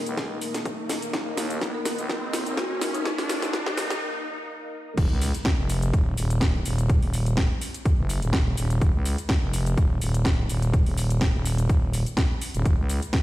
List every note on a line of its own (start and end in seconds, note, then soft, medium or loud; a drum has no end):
0.00 4.94 A#3 medium
0.00 4.01 D#4 medium
0.00 4.93 D#4 medium
0.00 4.01 A#4 medium
0.00 4.94 A#4 medium
0.00 4.01 D#5 medium
0.00 riser medium
0.06 0.40 C#2 medium
0.06 closed hi-hat medium
0.06 shaker soft
0.17 kick loud
0.17 snare medium
0.17 closed hi-hat medium
0.17 shaker soft
0.41 open hi-hat loud
0.41 shaker medium
0.54 snare medium
0.54 closed hi-hat medium
0.54 shaker soft
0.65 kick loud
0.65 closed hi-hat medium
0.65 shaker soft
0.89 snare medium
0.89 open hi-hat loud
0.89 shaker medium
1.02 closed hi-hat medium
1.02 shaker soft
1.13 1.36 D#1 loud
1.13 kick loud
1.13 snare medium
1.13 closed hi-hat soft
1.13 shaker soft
1.37 1.60 D#2 loud
1.37 snare medium
1.37 open hi-hat loud
1.37 shaker medium
1.50 closed hi-hat medium
1.50 shaker soft
1.61 1.72 C#2 loud
1.61 kick loud
1.61 snare medium
1.61 closed hi-hat soft
1.61 shaker soft
1.74 1.82 A#4 medium
1.85 1.94 A#4 medium
1.85 snare medium
1.85 open hi-hat loud
1.85 shaker medium
1.98 2.32 C#2 medium
1.98 closed hi-hat medium
1.98 shaker soft
2.09 kick loud
2.09 snare medium
2.09 closed hi-hat soft
2.09 shaker soft
2.33 2.44 D#1 loud
2.33 snare medium
2.33 open hi-hat loud
2.33 shaker medium
2.46 2.68 D#1 medium
2.46 closed hi-hat medium
2.46 shaker soft
2.57 2.66 F#4 medium
2.57 kick loud
2.57 snare medium
2.57 closed hi-hat medium
2.57 shaker soft
2.70 3.16 F1 loud
2.70 2.77 F#4 medium
2.81 snare medium
2.81 open hi-hat loud
2.81 shaker medium
2.94 3.10 D#4 medium
2.94 closed hi-hat medium
2.94 shaker soft
3.05 kick loud
3.05 snare medium
3.05 closed hi-hat soft
3.05 shaker soft
3.18 3.64 D#2 medium
3.18 snare medium
3.18 open hi-hat medium
3.29 snare medium
3.29 open hi-hat loud
3.29 shaker medium
3.42 3.99 D#4 medium
3.42 snare medium
3.42 closed hi-hat medium
3.42 shaker soft
3.53 kick loud
3.53 snare medium
3.53 closed hi-hat soft
3.53 shaker soft
3.66 snare medium
3.77 snare loud
3.77 open hi-hat loud
3.77 shaker medium
3.90 snare medium
3.90 closed hi-hat medium
3.90 shaker soft
4.97 5.08 D#1 medium
4.97 13.23 A#3 medium
4.97 13.23 D#4 medium
4.97 12.64 A#4 medium
4.97 kick loud
4.97 closed hi-hat medium
4.97 crash loud
4.97 impact medium
4.97 shaker soft
5.10 5.32 C#2 medium
5.21 open hi-hat loud
5.21 shaker medium
5.34 closed hi-hat medium
5.34 shaker soft
5.45 kick loud
5.45 snare loud
5.45 closed hi-hat medium
5.45 shaker soft
5.58 5.92 F1 loud
5.69 open hi-hat loud
5.69 shaker medium
5.82 closed hi-hat medium
5.82 shaker soft
5.93 6.16 D#1 medium
5.93 kick loud
5.93 closed hi-hat medium
5.93 shaker soft
6.17 6.64 D#1 loud
6.17 open hi-hat loud
6.17 shaker medium
6.30 closed hi-hat medium
6.30 shaker soft
6.41 kick loud
6.41 snare loud
6.41 closed hi-hat medium
6.41 shaker soft
6.65 7.00 D#1 medium
6.65 open hi-hat loud
6.65 shaker medium
6.78 closed hi-hat medium
6.78 shaker soft
6.89 kick loud
6.89 closed hi-hat medium
6.89 shaker soft
7.02 7.48 D#1 medium
7.02 open hi-hat medium
7.13 open hi-hat loud
7.13 shaker medium
7.26 closed hi-hat medium
7.26 shaker soft
7.37 kick loud
7.37 snare loud
7.37 closed hi-hat medium
7.37 shaker soft
7.61 open hi-hat loud
7.61 shaker medium
7.74 closed hi-hat medium
7.74 shaker soft
7.85 kick loud
7.85 closed hi-hat medium
7.85 shaker soft
7.98 8.20 F#1 loud
8.09 open hi-hat loud
8.09 shaker medium
8.22 8.56 D#1 loud
8.22 closed hi-hat medium
8.22 shaker soft
8.33 kick loud
8.33 snare loud
8.33 closed hi-hat medium
8.33 shaker soft
8.57 8.80 D#1 medium
8.57 open hi-hat loud
8.57 shaker medium
8.70 closed hi-hat medium
8.70 shaker soft
8.81 8.92 D#1 loud
8.81 kick loud
8.81 closed hi-hat soft
8.81 shaker soft
8.94 9.16 C#2 medium
9.05 open hi-hat loud
9.05 shaker medium
9.18 closed hi-hat medium
9.18 shaker soft
9.29 kick loud
9.29 snare loud
9.29 closed hi-hat soft
9.29 shaker soft
9.42 9.76 F1 loud
9.53 open hi-hat loud
9.53 shaker medium
9.66 closed hi-hat medium
9.66 shaker soft
9.77 10.00 D#1 loud
9.77 kick loud
9.77 closed hi-hat soft
9.77 shaker soft
10.01 10.48 D#1 loud
10.01 open hi-hat loud
10.01 shaker medium
10.14 closed hi-hat medium
10.14 shaker soft
10.25 kick loud
10.25 snare loud
10.25 closed hi-hat medium
10.25 shaker soft
10.49 10.84 D#1 medium
10.49 open hi-hat loud
10.49 shaker medium
10.62 closed hi-hat medium
10.62 shaker soft
10.73 kick loud
10.73 closed hi-hat soft
10.73 shaker soft
10.86 11.32 D#1 medium
10.86 open hi-hat medium
10.97 open hi-hat loud
10.97 shaker medium
11.10 closed hi-hat medium
11.10 shaker soft
11.21 kick loud
11.21 snare loud
11.21 closed hi-hat soft
11.21 shaker soft
11.34 11.68 D#1 loud
11.45 open hi-hat loud
11.45 shaker medium
11.58 closed hi-hat medium
11.58 shaker soft
11.69 12.04 D#1 loud
11.69 kick loud
11.69 closed hi-hat soft
11.69 shaker soft
11.93 open hi-hat loud
11.93 shaker medium
12.06 closed hi-hat medium
12.06 shaker soft
12.17 kick loud
12.17 snare loud
12.17 closed hi-hat soft
12.17 shaker soft
12.41 open hi-hat loud
12.41 shaker medium
12.54 12.64 D#1 medium
12.54 closed hi-hat medium
12.54 shaker soft
12.65 12.76 D#1 loud
12.65 13.23 C#5 loud
12.65 kick loud
12.65 closed hi-hat medium
12.65 shaker soft
12.78 13.00 C#2 medium
12.89 open hi-hat loud
12.89 shaker medium
13.02 closed hi-hat medium
13.02 shaker soft
13.13 kick loud
13.13 snare loud
13.13 closed hi-hat medium
13.13 shaker soft